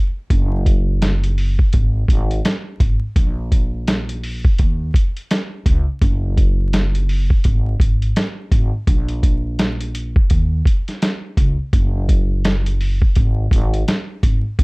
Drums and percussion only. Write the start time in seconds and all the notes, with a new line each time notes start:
0.30 kick, closed hi-hat
0.66 kick, closed hi-hat
1.02 snare, closed hi-hat
1.24 closed hi-hat
1.38 open hi-hat
1.59 kick
1.73 kick, closed hi-hat
2.08 kick, closed hi-hat
2.31 closed hi-hat
2.45 snare, closed hi-hat
2.80 kick, closed hi-hat
3.16 kick, closed hi-hat
3.52 kick, closed hi-hat
3.88 snare, closed hi-hat
4.09 closed hi-hat
4.24 open hi-hat
4.45 kick
4.58 kick, closed hi-hat
4.94 kick, closed hi-hat
5.17 closed hi-hat
5.31 snare, closed hi-hat
5.66 kick, closed hi-hat
6.02 kick, closed hi-hat
6.37 kick, closed hi-hat
6.73 snare, closed hi-hat
6.95 closed hi-hat
7.09 open hi-hat
7.30 kick
7.44 kick, closed hi-hat
7.80 kick, closed hi-hat
8.02 closed hi-hat
8.16 snare, closed hi-hat
8.51 kick, closed hi-hat
8.87 kick, closed hi-hat
9.08 closed hi-hat
9.23 kick, closed hi-hat
9.59 snare, closed hi-hat
9.81 closed hi-hat
9.95 closed hi-hat
10.16 kick
10.30 kick, closed hi-hat
10.65 kick, closed hi-hat
10.88 snare, closed hi-hat
11.02 snare, closed hi-hat
11.37 kick, closed hi-hat
11.73 kick, closed hi-hat
12.09 kick, closed hi-hat
12.45 snare, closed hi-hat
12.66 closed hi-hat
12.81 open hi-hat
13.02 kick
13.16 kick, closed hi-hat
13.51 kick, closed hi-hat
13.74 closed hi-hat
13.88 snare, closed hi-hat
14.23 kick, closed hi-hat
14.59 kick, closed hi-hat